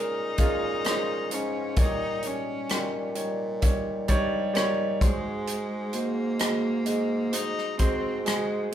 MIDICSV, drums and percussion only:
0, 0, Header, 1, 2, 480
1, 0, Start_track
1, 0, Tempo, 927357
1, 919, Time_signature, 4, 2, 24, 8
1, 4525, End_track
2, 0, Start_track
2, 0, Title_t, "Drums"
2, 195, Note_on_c, 9, 42, 55
2, 199, Note_on_c, 9, 36, 70
2, 247, Note_off_c, 9, 42, 0
2, 251, Note_off_c, 9, 36, 0
2, 437, Note_on_c, 9, 42, 59
2, 447, Note_on_c, 9, 37, 92
2, 489, Note_off_c, 9, 42, 0
2, 498, Note_off_c, 9, 37, 0
2, 678, Note_on_c, 9, 42, 66
2, 730, Note_off_c, 9, 42, 0
2, 913, Note_on_c, 9, 42, 76
2, 916, Note_on_c, 9, 36, 104
2, 965, Note_off_c, 9, 42, 0
2, 968, Note_off_c, 9, 36, 0
2, 1152, Note_on_c, 9, 42, 57
2, 1204, Note_off_c, 9, 42, 0
2, 1394, Note_on_c, 9, 42, 71
2, 1402, Note_on_c, 9, 37, 93
2, 1446, Note_off_c, 9, 42, 0
2, 1454, Note_off_c, 9, 37, 0
2, 1632, Note_on_c, 9, 42, 60
2, 1684, Note_off_c, 9, 42, 0
2, 1873, Note_on_c, 9, 42, 72
2, 1877, Note_on_c, 9, 36, 78
2, 1925, Note_off_c, 9, 42, 0
2, 1929, Note_off_c, 9, 36, 0
2, 2112, Note_on_c, 9, 42, 55
2, 2117, Note_on_c, 9, 36, 69
2, 2164, Note_off_c, 9, 42, 0
2, 2168, Note_off_c, 9, 36, 0
2, 2354, Note_on_c, 9, 42, 55
2, 2364, Note_on_c, 9, 37, 95
2, 2406, Note_off_c, 9, 42, 0
2, 2416, Note_off_c, 9, 37, 0
2, 2595, Note_on_c, 9, 36, 87
2, 2596, Note_on_c, 9, 42, 69
2, 2646, Note_off_c, 9, 36, 0
2, 2648, Note_off_c, 9, 42, 0
2, 2833, Note_on_c, 9, 42, 69
2, 2884, Note_off_c, 9, 42, 0
2, 3068, Note_on_c, 9, 42, 58
2, 3120, Note_off_c, 9, 42, 0
2, 3309, Note_on_c, 9, 42, 71
2, 3317, Note_on_c, 9, 37, 100
2, 3361, Note_off_c, 9, 42, 0
2, 3369, Note_off_c, 9, 37, 0
2, 3549, Note_on_c, 9, 42, 63
2, 3601, Note_off_c, 9, 42, 0
2, 3792, Note_on_c, 9, 42, 81
2, 3844, Note_off_c, 9, 42, 0
2, 3924, Note_on_c, 9, 37, 27
2, 3976, Note_off_c, 9, 37, 0
2, 4031, Note_on_c, 9, 42, 57
2, 4035, Note_on_c, 9, 36, 68
2, 4083, Note_off_c, 9, 42, 0
2, 4087, Note_off_c, 9, 36, 0
2, 4275, Note_on_c, 9, 42, 60
2, 4285, Note_on_c, 9, 37, 92
2, 4327, Note_off_c, 9, 42, 0
2, 4337, Note_off_c, 9, 37, 0
2, 4525, End_track
0, 0, End_of_file